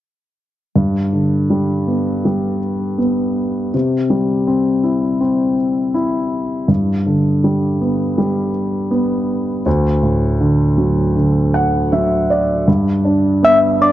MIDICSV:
0, 0, Header, 1, 3, 480
1, 0, Start_track
1, 0, Key_signature, 1, "major"
1, 0, Tempo, 742574
1, 492, Time_signature, 4, 2, 24, 8
1, 6245, Tempo, 753769
1, 8958, End_track
2, 0, Start_track
2, 0, Title_t, "Soft synth lead"
2, 0, Program_c, 0, 80
2, 8654, Note_on_c, 0, 76, 97
2, 8743, Note_off_c, 0, 76, 0
2, 8890, Note_on_c, 0, 74, 98
2, 8958, Note_off_c, 0, 74, 0
2, 8958, End_track
3, 0, Start_track
3, 0, Title_t, "Grand piano"
3, 0, Program_c, 1, 0
3, 488, Note_on_c, 1, 43, 44
3, 608, Control_c, 1, 64, 127
3, 729, Note_on_c, 1, 50, 33
3, 971, Note_on_c, 1, 55, 38
3, 1211, Note_on_c, 1, 59, 28
3, 1446, Note_off_c, 1, 55, 0
3, 1456, Note_on_c, 1, 55, 36
3, 1670, Note_off_c, 1, 50, 0
3, 1918, Note_off_c, 1, 59, 0
3, 1928, Note_on_c, 1, 59, 33
3, 2391, Note_off_c, 1, 43, 0
3, 2392, Note_off_c, 1, 55, 0
3, 2399, Note_off_c, 1, 59, 0
3, 2417, Note_on_c, 1, 48, 45
3, 2427, Control_c, 1, 64, 0
3, 2554, Control_c, 1, 64, 127
3, 2650, Note_on_c, 1, 55, 37
3, 2890, Note_on_c, 1, 60, 39
3, 3125, Note_on_c, 1, 64, 34
3, 3355, Note_off_c, 1, 60, 0
3, 3365, Note_on_c, 1, 60, 38
3, 3582, Note_off_c, 1, 55, 0
3, 3833, Note_off_c, 1, 64, 0
3, 3842, Note_on_c, 1, 64, 41
3, 4296, Note_off_c, 1, 60, 0
3, 4299, Note_off_c, 1, 48, 0
3, 4307, Note_off_c, 1, 64, 0
3, 4319, Note_on_c, 1, 43, 43
3, 4335, Control_c, 1, 64, 0
3, 4464, Control_c, 1, 64, 127
3, 4565, Note_on_c, 1, 50, 36
3, 4809, Note_on_c, 1, 55, 40
3, 5048, Note_on_c, 1, 59, 31
3, 5277, Note_off_c, 1, 55, 0
3, 5287, Note_on_c, 1, 55, 42
3, 5498, Note_off_c, 1, 50, 0
3, 5750, Note_off_c, 1, 59, 0
3, 5760, Note_on_c, 1, 59, 41
3, 6216, Note_off_c, 1, 43, 0
3, 6221, Note_off_c, 1, 55, 0
3, 6229, Note_off_c, 1, 59, 0
3, 6244, Note_on_c, 1, 38, 50
3, 6254, Control_c, 1, 64, 0
3, 6364, Control_c, 1, 64, 127
3, 6481, Note_on_c, 1, 45, 34
3, 6719, Note_on_c, 1, 50, 42
3, 6958, Note_on_c, 1, 54, 37
3, 7191, Note_off_c, 1, 50, 0
3, 7201, Note_on_c, 1, 50, 38
3, 7414, Note_off_c, 1, 45, 0
3, 7442, Note_on_c, 1, 78, 50
3, 7667, Note_off_c, 1, 78, 0
3, 7678, Note_off_c, 1, 54, 0
3, 7685, Note_on_c, 1, 76, 46
3, 7688, Note_on_c, 1, 54, 40
3, 7909, Note_off_c, 1, 76, 0
3, 7926, Note_on_c, 1, 74, 46
3, 8138, Note_off_c, 1, 38, 0
3, 8138, Note_off_c, 1, 50, 0
3, 8148, Note_off_c, 1, 74, 0
3, 8152, Note_off_c, 1, 54, 0
3, 8165, Note_on_c, 1, 43, 50
3, 8172, Control_c, 1, 64, 0
3, 8282, Control_c, 1, 64, 127
3, 8401, Note_on_c, 1, 62, 40
3, 8643, Note_on_c, 1, 59, 44
3, 8875, Note_off_c, 1, 62, 0
3, 8885, Note_on_c, 1, 62, 35
3, 8958, Note_off_c, 1, 43, 0
3, 8958, Note_off_c, 1, 59, 0
3, 8958, Note_off_c, 1, 62, 0
3, 8958, End_track
0, 0, End_of_file